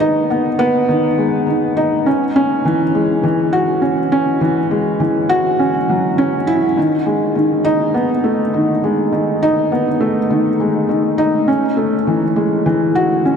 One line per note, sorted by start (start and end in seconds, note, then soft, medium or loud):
0.00 0.89 D#3 medium
0.00 1.18 G#3 medium
0.00 0.30 B3 medium
0.00 1.77 D#4 loud
0.30 0.47 B3 medium
0.59 0.87 B3 loud
0.89 1.06 D#3 medium
1.18 1.46 G#3 medium
1.47 1.75 D#3 medium
1.77 2.05 D#4 loud
2.06 2.23 C#4 medium
2.36 2.64 C#4 loud
2.65 2.82 E3 medium
2.95 3.23 G#3 medium
3.23 3.52 E3 medium
3.53 3.81 F#4 loud
3.82 3.99 C#4 medium
4.12 4.40 C#4 loud
4.41 4.58 E3 medium
4.71 4.99 G#3 medium
5.00 5.28 E3 medium
5.29 5.58 F#4 loud
5.59 5.76 C#4 medium
5.89 6.17 F#3 medium
6.18 6.35 C#4 loud
6.47 6.64 E4 loud
6.78 6.94 D#3 medium
7.06 7.34 G#3 medium
7.35 7.63 D#3 medium
7.65 7.93 D#4 loud
7.94 8.11 B3 medium
8.24 8.41 A3 medium
8.54 8.71 D#3 medium
8.84 9.11 G#3 medium
9.13 9.40 D#3 medium
9.43 9.70 D#4 loud
9.72 9.88 B3 medium
10.01 10.17 A3 medium
10.30 10.47 D#3 medium
10.60 10.88 G#3 medium
10.89 11.17 D#3 medium
11.18 11.46 D#4 loud
11.48 11.64 C#4 medium
11.77 11.94 A3 medium
12.07 12.24 E3 medium
12.36 12.64 G#3 medium
12.66 12.94 E3 medium
12.95 13.23 F#4 loud
13.25 13.37 C#4 medium